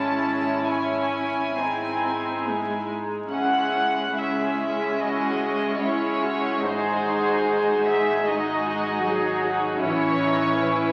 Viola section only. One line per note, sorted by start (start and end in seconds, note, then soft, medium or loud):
0.00 0.65 G#3 soft
0.00 0.64 C#4 soft
0.68 1.53 C#4 soft
1.58 2.46 C4 soft
2.46 3.31 G#3 soft
3.32 4.14 G#3 soft
3.32 4.14 C#4 soft
4.19 5.80 G#3 soft
4.19 5.80 C#4 soft
5.83 6.64 G#3 soft
5.83 6.64 C#4 soft
6.65 8.24 G#3 soft
6.65 8.28 D#4 soft
8.28 9.06 G#3 soft
8.28 9.83 D#4 soft
9.05 9.84 F#3 soft
9.84 10.92 E3 soft
9.84 10.92 C#4 soft